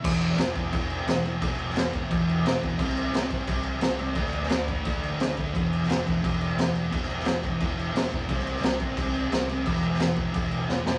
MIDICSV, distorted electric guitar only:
0, 0, Header, 1, 2, 480
1, 0, Start_track
1, 0, Tempo, 343446
1, 56, Time_signature, 4, 2, 24, 8
1, 15353, End_track
2, 0, Start_track
2, 0, Title_t, "Distorted electric guitar"
2, 0, Program_c, 0, 30
2, 33, Note_on_c, 0, 40, 97
2, 59, Note_on_c, 0, 47, 99
2, 69, Note_on_c, 0, 52, 111
2, 515, Note_off_c, 0, 40, 0
2, 516, Note_off_c, 0, 47, 0
2, 521, Note_on_c, 0, 40, 83
2, 533, Note_on_c, 0, 47, 88
2, 540, Note_off_c, 0, 52, 0
2, 546, Note_on_c, 0, 52, 91
2, 749, Note_off_c, 0, 40, 0
2, 754, Note_on_c, 0, 40, 75
2, 760, Note_off_c, 0, 47, 0
2, 777, Note_on_c, 0, 47, 88
2, 786, Note_off_c, 0, 52, 0
2, 791, Note_on_c, 0, 52, 96
2, 983, Note_off_c, 0, 40, 0
2, 997, Note_off_c, 0, 47, 0
2, 1000, Note_on_c, 0, 40, 96
2, 1014, Note_on_c, 0, 47, 96
2, 1023, Note_off_c, 0, 52, 0
2, 1028, Note_on_c, 0, 52, 99
2, 1456, Note_off_c, 0, 40, 0
2, 1473, Note_on_c, 0, 40, 83
2, 1475, Note_off_c, 0, 47, 0
2, 1492, Note_on_c, 0, 47, 92
2, 1503, Note_off_c, 0, 52, 0
2, 1509, Note_on_c, 0, 52, 95
2, 1713, Note_off_c, 0, 40, 0
2, 1730, Note_on_c, 0, 40, 79
2, 1732, Note_off_c, 0, 47, 0
2, 1748, Note_on_c, 0, 47, 91
2, 1750, Note_off_c, 0, 52, 0
2, 1755, Note_on_c, 0, 52, 99
2, 1946, Note_off_c, 0, 40, 0
2, 1963, Note_off_c, 0, 47, 0
2, 1963, Note_on_c, 0, 40, 96
2, 1980, Note_on_c, 0, 47, 107
2, 1987, Note_off_c, 0, 52, 0
2, 1993, Note_on_c, 0, 52, 99
2, 2441, Note_off_c, 0, 40, 0
2, 2452, Note_off_c, 0, 47, 0
2, 2458, Note_on_c, 0, 40, 80
2, 2468, Note_on_c, 0, 47, 92
2, 2480, Note_off_c, 0, 52, 0
2, 2485, Note_on_c, 0, 52, 93
2, 2663, Note_off_c, 0, 40, 0
2, 2679, Note_off_c, 0, 47, 0
2, 2679, Note_on_c, 0, 40, 81
2, 2696, Note_on_c, 0, 47, 88
2, 2703, Note_off_c, 0, 52, 0
2, 2708, Note_on_c, 0, 52, 89
2, 2915, Note_off_c, 0, 40, 0
2, 2928, Note_off_c, 0, 47, 0
2, 2932, Note_on_c, 0, 40, 101
2, 2941, Note_off_c, 0, 52, 0
2, 2945, Note_on_c, 0, 47, 108
2, 2957, Note_on_c, 0, 52, 100
2, 3386, Note_off_c, 0, 40, 0
2, 3401, Note_off_c, 0, 47, 0
2, 3402, Note_on_c, 0, 40, 84
2, 3418, Note_on_c, 0, 47, 96
2, 3423, Note_off_c, 0, 52, 0
2, 3439, Note_on_c, 0, 52, 91
2, 3620, Note_off_c, 0, 40, 0
2, 3637, Note_on_c, 0, 40, 84
2, 3650, Note_off_c, 0, 47, 0
2, 3657, Note_off_c, 0, 52, 0
2, 3666, Note_on_c, 0, 47, 94
2, 3674, Note_on_c, 0, 52, 93
2, 3877, Note_off_c, 0, 47, 0
2, 3878, Note_off_c, 0, 40, 0
2, 3882, Note_on_c, 0, 48, 88
2, 3896, Note_off_c, 0, 52, 0
2, 3903, Note_on_c, 0, 55, 101
2, 3914, Note_on_c, 0, 60, 111
2, 4350, Note_off_c, 0, 48, 0
2, 4367, Note_on_c, 0, 48, 86
2, 4368, Note_off_c, 0, 55, 0
2, 4376, Note_off_c, 0, 60, 0
2, 4385, Note_on_c, 0, 55, 96
2, 4393, Note_on_c, 0, 60, 96
2, 4572, Note_off_c, 0, 48, 0
2, 4588, Note_on_c, 0, 48, 84
2, 4592, Note_off_c, 0, 55, 0
2, 4603, Note_off_c, 0, 60, 0
2, 4609, Note_on_c, 0, 55, 87
2, 4620, Note_on_c, 0, 60, 93
2, 4815, Note_off_c, 0, 48, 0
2, 4831, Note_on_c, 0, 48, 105
2, 4834, Note_off_c, 0, 55, 0
2, 4842, Note_off_c, 0, 60, 0
2, 4851, Note_on_c, 0, 55, 101
2, 4859, Note_on_c, 0, 60, 107
2, 5285, Note_off_c, 0, 48, 0
2, 5301, Note_off_c, 0, 55, 0
2, 5302, Note_on_c, 0, 48, 94
2, 5317, Note_on_c, 0, 55, 93
2, 5321, Note_off_c, 0, 60, 0
2, 5338, Note_on_c, 0, 60, 100
2, 5519, Note_off_c, 0, 48, 0
2, 5536, Note_off_c, 0, 55, 0
2, 5536, Note_on_c, 0, 48, 85
2, 5547, Note_off_c, 0, 60, 0
2, 5553, Note_on_c, 0, 55, 88
2, 5564, Note_on_c, 0, 60, 91
2, 5784, Note_off_c, 0, 48, 0
2, 5790, Note_on_c, 0, 50, 100
2, 5796, Note_off_c, 0, 55, 0
2, 5802, Note_off_c, 0, 60, 0
2, 5810, Note_on_c, 0, 57, 104
2, 5821, Note_on_c, 0, 62, 99
2, 6269, Note_off_c, 0, 50, 0
2, 6286, Note_off_c, 0, 57, 0
2, 6286, Note_on_c, 0, 50, 94
2, 6299, Note_off_c, 0, 62, 0
2, 6303, Note_on_c, 0, 57, 84
2, 6315, Note_on_c, 0, 62, 96
2, 6523, Note_off_c, 0, 50, 0
2, 6538, Note_off_c, 0, 57, 0
2, 6540, Note_on_c, 0, 50, 88
2, 6552, Note_off_c, 0, 62, 0
2, 6555, Note_on_c, 0, 57, 85
2, 6568, Note_on_c, 0, 62, 91
2, 6749, Note_off_c, 0, 50, 0
2, 6766, Note_on_c, 0, 50, 98
2, 6768, Note_off_c, 0, 57, 0
2, 6781, Note_off_c, 0, 62, 0
2, 6784, Note_on_c, 0, 57, 96
2, 6797, Note_on_c, 0, 62, 118
2, 7235, Note_off_c, 0, 50, 0
2, 7251, Note_off_c, 0, 57, 0
2, 7252, Note_on_c, 0, 50, 88
2, 7258, Note_off_c, 0, 62, 0
2, 7268, Note_on_c, 0, 57, 97
2, 7275, Note_on_c, 0, 62, 108
2, 7465, Note_off_c, 0, 50, 0
2, 7482, Note_on_c, 0, 50, 80
2, 7484, Note_off_c, 0, 57, 0
2, 7501, Note_off_c, 0, 62, 0
2, 7501, Note_on_c, 0, 57, 84
2, 7518, Note_on_c, 0, 62, 100
2, 7721, Note_off_c, 0, 50, 0
2, 7725, Note_on_c, 0, 40, 88
2, 7730, Note_off_c, 0, 57, 0
2, 7739, Note_off_c, 0, 62, 0
2, 7754, Note_on_c, 0, 47, 103
2, 7756, Note_on_c, 0, 52, 108
2, 8204, Note_off_c, 0, 40, 0
2, 8207, Note_off_c, 0, 47, 0
2, 8210, Note_on_c, 0, 40, 85
2, 8223, Note_on_c, 0, 47, 91
2, 8233, Note_off_c, 0, 52, 0
2, 8238, Note_on_c, 0, 52, 94
2, 8449, Note_off_c, 0, 40, 0
2, 8454, Note_off_c, 0, 47, 0
2, 8454, Note_on_c, 0, 40, 85
2, 8470, Note_on_c, 0, 47, 80
2, 8482, Note_off_c, 0, 52, 0
2, 8487, Note_on_c, 0, 52, 92
2, 8676, Note_off_c, 0, 40, 0
2, 8690, Note_off_c, 0, 47, 0
2, 8693, Note_on_c, 0, 40, 101
2, 8707, Note_on_c, 0, 47, 111
2, 8712, Note_off_c, 0, 52, 0
2, 8717, Note_on_c, 0, 52, 114
2, 9163, Note_off_c, 0, 40, 0
2, 9172, Note_off_c, 0, 47, 0
2, 9180, Note_on_c, 0, 40, 91
2, 9188, Note_on_c, 0, 47, 87
2, 9200, Note_off_c, 0, 52, 0
2, 9205, Note_on_c, 0, 52, 102
2, 9396, Note_off_c, 0, 40, 0
2, 9413, Note_on_c, 0, 40, 78
2, 9419, Note_off_c, 0, 47, 0
2, 9434, Note_off_c, 0, 52, 0
2, 9436, Note_on_c, 0, 47, 90
2, 9439, Note_on_c, 0, 52, 95
2, 9636, Note_off_c, 0, 40, 0
2, 9646, Note_off_c, 0, 47, 0
2, 9652, Note_on_c, 0, 40, 96
2, 9662, Note_on_c, 0, 47, 110
2, 9674, Note_off_c, 0, 52, 0
2, 9680, Note_on_c, 0, 52, 110
2, 10125, Note_off_c, 0, 40, 0
2, 10139, Note_off_c, 0, 47, 0
2, 10142, Note_on_c, 0, 40, 80
2, 10156, Note_on_c, 0, 47, 84
2, 10162, Note_off_c, 0, 52, 0
2, 10167, Note_on_c, 0, 52, 99
2, 10359, Note_off_c, 0, 40, 0
2, 10376, Note_on_c, 0, 40, 83
2, 10378, Note_off_c, 0, 47, 0
2, 10395, Note_on_c, 0, 47, 78
2, 10402, Note_off_c, 0, 52, 0
2, 10408, Note_on_c, 0, 52, 89
2, 10612, Note_off_c, 0, 40, 0
2, 10629, Note_on_c, 0, 40, 94
2, 10633, Note_off_c, 0, 47, 0
2, 10644, Note_off_c, 0, 52, 0
2, 10649, Note_on_c, 0, 52, 114
2, 10650, Note_on_c, 0, 47, 103
2, 11084, Note_off_c, 0, 40, 0
2, 11100, Note_on_c, 0, 40, 88
2, 11102, Note_off_c, 0, 47, 0
2, 11119, Note_on_c, 0, 47, 101
2, 11124, Note_off_c, 0, 52, 0
2, 11130, Note_on_c, 0, 52, 91
2, 11319, Note_off_c, 0, 40, 0
2, 11330, Note_off_c, 0, 47, 0
2, 11336, Note_on_c, 0, 40, 85
2, 11347, Note_on_c, 0, 47, 86
2, 11362, Note_off_c, 0, 52, 0
2, 11367, Note_on_c, 0, 52, 104
2, 11565, Note_off_c, 0, 40, 0
2, 11570, Note_off_c, 0, 47, 0
2, 11581, Note_on_c, 0, 48, 103
2, 11587, Note_off_c, 0, 52, 0
2, 11593, Note_on_c, 0, 55, 99
2, 11605, Note_on_c, 0, 60, 106
2, 12036, Note_off_c, 0, 48, 0
2, 12050, Note_off_c, 0, 55, 0
2, 12053, Note_on_c, 0, 48, 90
2, 12056, Note_off_c, 0, 60, 0
2, 12067, Note_on_c, 0, 55, 93
2, 12072, Note_on_c, 0, 60, 103
2, 12277, Note_off_c, 0, 48, 0
2, 12293, Note_off_c, 0, 55, 0
2, 12294, Note_on_c, 0, 48, 75
2, 12307, Note_off_c, 0, 60, 0
2, 12310, Note_on_c, 0, 55, 94
2, 12324, Note_on_c, 0, 60, 102
2, 12514, Note_off_c, 0, 48, 0
2, 12523, Note_off_c, 0, 55, 0
2, 12530, Note_on_c, 0, 48, 99
2, 12537, Note_off_c, 0, 60, 0
2, 12540, Note_on_c, 0, 55, 104
2, 12553, Note_on_c, 0, 60, 105
2, 12977, Note_off_c, 0, 48, 0
2, 12993, Note_on_c, 0, 48, 86
2, 12997, Note_off_c, 0, 55, 0
2, 13012, Note_off_c, 0, 60, 0
2, 13014, Note_on_c, 0, 55, 94
2, 13029, Note_on_c, 0, 60, 92
2, 13231, Note_off_c, 0, 48, 0
2, 13247, Note_on_c, 0, 48, 86
2, 13250, Note_off_c, 0, 55, 0
2, 13257, Note_off_c, 0, 60, 0
2, 13267, Note_on_c, 0, 55, 97
2, 13274, Note_on_c, 0, 60, 90
2, 13477, Note_on_c, 0, 40, 109
2, 13478, Note_off_c, 0, 48, 0
2, 13485, Note_on_c, 0, 47, 100
2, 13487, Note_off_c, 0, 55, 0
2, 13491, Note_off_c, 0, 60, 0
2, 13499, Note_on_c, 0, 52, 112
2, 13929, Note_off_c, 0, 40, 0
2, 13946, Note_on_c, 0, 40, 88
2, 13949, Note_off_c, 0, 47, 0
2, 13962, Note_off_c, 0, 52, 0
2, 13966, Note_on_c, 0, 47, 85
2, 13979, Note_on_c, 0, 52, 97
2, 14170, Note_off_c, 0, 40, 0
2, 14184, Note_off_c, 0, 47, 0
2, 14187, Note_on_c, 0, 40, 82
2, 14195, Note_off_c, 0, 52, 0
2, 14200, Note_on_c, 0, 47, 90
2, 14211, Note_on_c, 0, 52, 101
2, 14410, Note_off_c, 0, 40, 0
2, 14426, Note_on_c, 0, 40, 99
2, 14432, Note_off_c, 0, 47, 0
2, 14443, Note_off_c, 0, 52, 0
2, 14448, Note_on_c, 0, 47, 105
2, 14460, Note_on_c, 0, 52, 103
2, 14911, Note_off_c, 0, 40, 0
2, 14927, Note_on_c, 0, 40, 88
2, 14934, Note_off_c, 0, 47, 0
2, 14940, Note_off_c, 0, 52, 0
2, 14951, Note_on_c, 0, 47, 93
2, 14957, Note_on_c, 0, 52, 96
2, 15132, Note_off_c, 0, 40, 0
2, 15149, Note_on_c, 0, 40, 80
2, 15158, Note_off_c, 0, 47, 0
2, 15172, Note_off_c, 0, 52, 0
2, 15174, Note_on_c, 0, 47, 82
2, 15189, Note_on_c, 0, 52, 95
2, 15353, Note_off_c, 0, 40, 0
2, 15353, Note_off_c, 0, 47, 0
2, 15353, Note_off_c, 0, 52, 0
2, 15353, End_track
0, 0, End_of_file